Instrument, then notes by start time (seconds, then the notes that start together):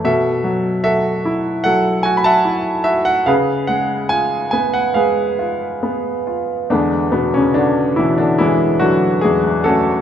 grand piano
0.04 B2 A4 E5
0.44 F#3
0.84 F#4 A4 E5
1.25 E4
1.64 F#3 A4 F#5
2.03 F#4 G#5
2.17 B5
2.24 E5 F#5 A5
2.45 E4
2.84 F#4 E5
3.05 F#5
3.26 C#3 G#4 B4 F5
3.67 G#3 F#5
4.09 F4 G#5
4.51 B3 G#5
4.74 F#5
4.94 G#3 G#4 B4 F5
5.39 F4
5.83 B3
6.27 F4
6.70 E2 D3 G#3 B3 D4
7.12 B2 B3
7.34 C#3 C#4
7.54 D3 D4
7.96 B2 E3 E4
8.18 D3 D4
8.39 E3 G#3 B3 E4
8.79 D3 F#3 F#4
9.21 E2 G#3 G#4
9.64 A3 C#4 F#4 A4